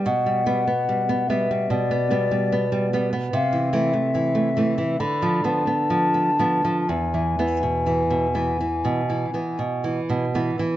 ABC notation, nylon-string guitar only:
X:1
M:4/4
L:1/16
Q:1/4=68
K:G
V:1 name="Nylon-string guitar" clef=bass
B,, G, [G,B,] B, G, B, [G,B,] G, B,, B, [G,B,] G, B, G, [G,B,] B, | [K:Ephr] C, E, [E,A,] A, E, A, [E,A,] E, D, F, [F,B,] B, F, B, [F,B,] F, | E,, E, [E,B,] B,, E, B,, [E,B,] E, B,, E, [E,B,] B,, E, B,, [E,B,] E, |]